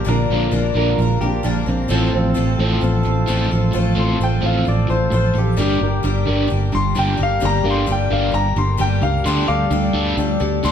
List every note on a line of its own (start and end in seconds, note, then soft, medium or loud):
0.00 1.87 A#3 medium
0.00 1.87 D4 medium
0.00 1.87 F4 medium
0.00 1.87 A#4 medium
0.04 0.27 A#1 medium
0.04 0.50 A#2 medium
0.04 0.28 A#2 medium
0.04 0.50 D3 medium
0.04 0.52 F3 medium
0.04 0.52 A#3 medium
0.04 0.52 D4 medium
0.04 0.24 F4 medium
0.04 0.53 A#4 medium
0.04 0.97 A#4 medium
0.04 0.25 A#4 medium
0.09 0.28 D3 medium
0.09 0.26 D5 medium
0.30 0.50 A#1 medium
0.30 0.52 A#2 medium
0.30 0.52 D3 medium
0.30 0.52 F3 medium
0.30 0.66 F4 medium
0.30 0.66 A#4 medium
0.34 0.67 D5 medium
0.51 0.72 A#1 medium
0.51 0.98 A#2 medium
0.51 0.74 A#2 medium
0.51 0.98 D3 medium
0.51 0.74 D3 medium
0.51 0.98 F3 medium
0.51 0.98 A#3 medium
0.51 0.99 D4 medium
0.51 0.99 A#4 medium
0.75 0.95 A#1 medium
0.75 0.97 A#2 medium
0.75 0.97 D3 loud
0.75 0.98 F3 medium
0.75 1.46 F4 medium
0.75 1.20 A#4 medium
0.75 1.47 A#4 medium
0.75 1.47 D5 medium
0.98 1.18 A#1 medium
0.98 1.19 A#2 medium
0.98 1.20 D3 medium
0.98 1.21 F3 medium
0.98 1.22 A#3 medium
0.98 1.21 D4 medium
0.98 1.20 A#4 medium
1.21 1.41 A#1 medium
1.21 1.43 A#2 medium
1.21 1.43 D3 medium
1.21 1.43 F3 soft
1.21 1.43 A#3 soft
1.21 1.44 D4 medium
1.21 1.43 G4 medium
1.21 1.44 A#4 medium
1.43 1.64 A#1 medium
1.43 1.67 A#2 medium
1.43 1.66 A#2 medium
1.43 1.67 D3 medium
1.43 1.66 D3 medium
1.43 1.67 F3 medium
1.43 1.67 A#3 medium
1.43 1.69 D4 medium
1.43 1.67 D4 medium
1.43 1.65 A#4 medium
1.66 1.87 A#1 medium
1.66 1.89 A#2 medium
1.66 1.89 D3 medium
1.66 1.88 F3 soft
1.66 1.88 A#3 medium
1.66 1.90 C4 medium
1.66 1.90 D4 medium
1.66 1.90 A#4 medium
1.88 2.10 A1 medium
1.88 2.12 A2 medium
1.88 2.12 F3 medium
1.88 2.33 A3 medium
1.88 5.54 A3 medium
1.88 2.34 C4 medium
1.88 5.54 C4 medium
1.88 2.13 C4 medium
1.88 2.07 F4 medium
1.88 2.34 F4 medium
1.88 5.54 F4 medium
1.88 2.08 A4 medium
1.88 2.35 A4 loud
1.88 5.54 A4 medium
1.88 2.08 C5 medium
2.12 2.33 A1 medium
2.12 2.35 A2 medium
2.12 2.35 F3 medium
2.12 3.04 C4 medium
2.12 2.48 F4 medium
2.12 2.48 A4 medium
2.12 2.48 C5 medium
2.34 2.57 A1 medium
2.34 2.57 A2 medium
2.34 2.58 F3 medium
2.34 2.80 A3 medium
2.34 2.81 C4 medium
2.34 2.82 F4 medium
2.34 2.82 A4 loud
2.58 2.79 A1 medium
2.58 2.81 A2 medium
2.58 2.81 F3 medium
2.58 2.81 C4 loud
2.58 3.29 F4 medium
2.58 3.29 A4 medium
2.58 3.30 C5 medium
2.81 3.02 A1 medium
2.81 3.03 A2 medium
2.81 3.03 F3 medium
2.81 3.04 A3 medium
2.81 3.05 C4 medium
2.81 3.04 F4 medium
2.81 3.02 A4 medium
3.03 3.26 A1 medium
3.03 3.26 A2 medium
3.03 3.26 F3 medium
3.03 3.27 C4 soft
3.03 3.28 F4 soft
3.03 3.27 A4 medium
3.27 3.48 A1 medium
3.27 3.49 A2 medium
3.27 3.49 F3 medium
3.27 3.51 A3 medium
3.27 3.51 C4 medium
3.27 3.50 C4 loud
3.27 3.51 F4 medium
3.27 3.50 A4 medium
3.51 3.71 A1 medium
3.51 3.71 A2 medium
3.51 3.72 F3 medium
3.51 3.74 F4 medium
3.51 3.74 A4 medium
3.55 3.73 C4 soft
3.72 3.94 A1 medium
3.72 3.94 A2 medium
3.72 3.94 F3 medium
3.72 4.19 A3 medium
3.72 4.20 C4 medium
3.72 3.91 F4 medium
3.72 4.20 F4 medium
3.72 3.91 A4 medium
3.72 4.21 A4 loud
3.72 3.92 C5 medium
3.96 4.17 A1 medium
3.96 4.17 A2 medium
3.96 4.18 F3 medium
3.96 4.18 C4 medium
3.96 4.32 F4 medium
3.96 4.32 A4 medium
3.96 4.32 C5 medium
3.96 4.20 C6 medium
4.18 4.40 A1 medium
4.18 4.40 A2 medium
4.18 4.40 F3 medium
4.18 4.64 A3 medium
4.18 4.66 C4 medium
4.18 4.66 F4 medium
4.23 4.67 A4 medium
4.23 4.44 G5 medium
4.40 4.63 A1 medium
4.40 4.63 A2 medium
4.40 4.64 F3 medium
4.40 4.64 C4 medium
4.40 5.12 F4 medium
4.40 5.12 A4 medium
4.40 5.13 C5 medium
4.46 4.67 F5 medium
4.65 4.87 A1 medium
4.65 4.86 A2 medium
4.65 4.86 F3 medium
4.65 4.88 A3 medium
4.65 4.89 C4 medium
4.65 4.89 F4 medium
4.65 4.88 A4 medium
4.65 4.89 D5 medium
4.87 5.09 A1 medium
4.87 5.09 A2 medium
4.87 5.09 F3 medium
4.87 5.12 F4 soft
4.87 5.12 A4 soft
4.87 5.12 C5 loud
4.92 5.12 C4 soft
5.10 5.32 A1 medium
5.10 5.32 A2 medium
5.10 5.32 F3 medium
5.10 5.35 A3 medium
5.10 5.35 C4 medium
5.10 5.35 F4 medium
5.10 5.34 A4 medium
5.10 5.35 C5 medium
5.34 5.55 A1 medium
5.34 5.55 A2 medium
5.34 5.55 F3 medium
5.34 5.58 F4 soft
5.34 5.58 A4 medium
5.38 5.58 C4 soft
5.38 5.59 G4 medium
5.57 5.78 G1 medium
5.57 6.02 G2 medium
5.57 5.79 G2 medium
5.57 6.03 D3 medium
5.57 5.80 D3 medium
5.57 6.04 G3 medium
5.57 5.79 G3 medium
5.57 6.03 A#3 medium
5.57 9.22 A#3 medium
5.57 9.22 D4 medium
5.57 5.75 G4 medium
5.57 9.22 G4 medium
5.57 6.04 G4 medium
5.57 6.48 G4 loud
5.57 5.75 A#4 medium
5.57 9.22 A#4 medium
5.57 6.04 A#4 medium
5.57 5.76 D5 medium
5.81 6.01 G1 medium
5.81 6.01 G2 medium
5.81 6.01 D3 medium
5.81 6.16 G4 medium
5.81 6.17 A#4 medium
5.81 6.17 D5 medium
6.03 6.24 G1 medium
6.03 6.49 G2 medium
6.03 6.24 G2 medium
6.03 6.50 D3 medium
6.03 6.25 D3 medium
6.03 6.47 G3 medium
6.03 6.49 A#3 medium
6.03 6.50 G4 medium
6.03 6.51 A#4 medium
6.26 6.48 G1 medium
6.26 6.48 G2 medium
6.26 6.48 D3 medium
6.26 6.49 G3 loud
6.26 6.96 G4 medium
6.26 6.97 A#4 medium
6.26 6.97 D5 medium
6.48 6.70 G2 medium
6.48 6.70 D3 medium
6.48 6.71 G3 medium
6.48 6.73 A#3 medium
6.48 6.72 G4 medium
6.52 6.71 G1 medium
6.52 6.71 A#4 medium
6.72 6.93 G1 medium
6.72 6.93 G2 medium
6.72 6.93 D3 medium
6.72 6.94 G3 soft
6.72 6.95 A#3 soft
6.72 6.95 G4 medium
6.72 6.95 A#4 medium
6.72 6.96 C6 loud
6.95 7.17 G1 medium
6.95 7.17 G2 medium
6.95 7.18 G2 medium
6.95 7.19 D3 medium
6.95 7.17 D3 medium
6.95 7.18 G3 medium
6.95 7.18 A#3 medium
6.95 7.17 G4 medium
6.95 7.16 A#4 medium
6.95 7.19 G5 medium
7.17 7.39 G1 medium
7.17 7.39 G2 medium
7.17 7.40 D3 medium
7.17 7.40 G3 soft
7.17 7.40 A#3 soft
7.17 7.41 G4 medium
7.17 7.41 A#4 medium
7.23 7.43 F5 medium
7.40 7.62 G1 medium
7.40 7.85 G2 medium
7.40 7.62 G2 medium
7.40 7.86 D3 medium
7.40 7.62 D3 medium
7.40 7.87 G3 medium
7.40 7.86 A#3 medium
7.40 7.59 G4 medium
7.40 7.88 G4 medium
7.40 7.59 A#4 medium
7.40 7.87 A#4 medium
7.40 7.60 D5 medium
7.45 7.66 A#5 loud
7.62 7.85 G1 medium
7.62 7.86 G2 medium
7.62 7.86 D3 medium
7.62 7.87 G3 loud
7.62 7.99 G4 medium
7.62 7.99 A#4 medium
7.62 8.00 F5 medium
7.70 7.90 C6 medium
7.86 8.08 G1 medium
7.86 8.33 G2 medium
7.86 8.08 G2 medium
7.86 8.33 D3 medium
7.86 8.08 D3 medium
7.86 8.31 G3 medium
7.86 8.33 A#3 medium
7.86 8.34 G4 medium
7.86 8.34 A#4 medium
7.92 8.12 G5 medium
8.10 8.31 G1 medium
8.10 8.32 G2 loud
8.10 8.32 D3 medium
8.10 8.33 G3 loud
8.10 8.80 G4 medium
8.10 8.81 A#4 medium
8.10 8.82 D5 medium
8.10 8.34 F5 medium
8.32 8.53 G1 medium
8.32 8.54 G2 medium
8.32 8.54 D3 medium
8.32 8.55 G3 medium
8.32 8.57 A#3 medium
8.32 8.56 G4 medium
8.32 8.55 A#4 medium
8.32 8.56 A#5 loud
8.56 8.76 G1 medium
8.56 8.77 G2 medium
8.56 8.77 D3 medium
8.56 8.77 G3 soft
8.56 8.77 A#3 soft
8.56 8.78 G4 medium
8.56 8.79 A#4 medium
8.56 8.80 C6 medium
8.77 9.00 G1 medium
8.77 9.01 G2 medium
8.77 9.00 G2 medium
8.77 9.02 D3 medium
8.77 9.00 D3 medium
8.77 9.02 G3 medium
8.77 9.02 A#3 medium
8.77 9.01 G4 medium
8.77 9.01 A#4 medium
8.77 9.02 G5 loud
9.02 9.22 C#2 medium
9.02 9.23 G2 medium
9.02 9.23 D3 medium
9.02 9.25 G3 soft
9.02 9.26 A#3 medium
9.02 9.25 G4 soft
9.02 9.25 A#4 medium
9.02 9.25 F5 medium
9.23 9.45 D2 medium
9.23 9.47 D3 medium
9.23 9.70 D3 medium
9.23 9.46 G3 medium
9.23 9.70 G3 medium
9.23 10.72 A3 medium
9.23 10.72 D4 medium
9.23 9.47 D4 loud
9.23 9.42 G4 medium
9.23 10.72 G4 medium
9.23 9.42 A4 medium
9.23 10.72 A4 medium
9.23 9.43 D5 medium
9.23 9.48 C6 medium
9.27 9.71 D4 medium
9.27 9.71 G4 medium
9.27 9.71 A4 loud
9.47 9.68 D2 medium
9.47 9.69 D3 medium
9.47 9.68 G3 medium
9.47 9.83 G4 medium
9.47 9.83 A4 medium
9.47 9.84 D5 medium
9.47 10.36 F5 medium
9.47 10.37 D6 loud
9.71 9.91 D2 medium
9.71 10.63 D3 medium
9.71 9.92 D3 medium
9.71 9.92 G3 medium
9.71 10.16 G3 medium
9.71 10.18 D4 medium
9.71 10.18 G4 medium
9.71 10.18 A4 medium
9.93 10.14 D2 medium
9.93 10.15 D3 medium
9.93 10.16 G3 medium
9.93 10.16 D4 loud
9.93 10.64 G4 medium
9.93 10.64 A4 medium
9.93 10.65 D5 medium
10.17 10.37 D2 medium
10.17 10.38 D3 medium
10.17 10.38 G3 medium
10.17 10.40 G3 medium
10.17 10.41 D4 medium
10.17 10.40 G4 medium
10.17 10.39 A4 medium
10.40 10.60 D2 medium
10.40 10.61 D3 medium
10.40 10.61 G3 medium
10.40 10.64 D4 soft
10.40 10.64 G4 medium
10.40 10.63 A4 medium
10.63 10.72 D2 medium
10.63 10.72 D3 medium
10.63 10.72 G3 loud
10.63 10.72 G3 medium
10.63 10.72 D4 loud
10.63 10.72 D4 medium
10.63 10.72 G4 medium
10.63 10.72 A4 medium
10.63 10.72 C6 loud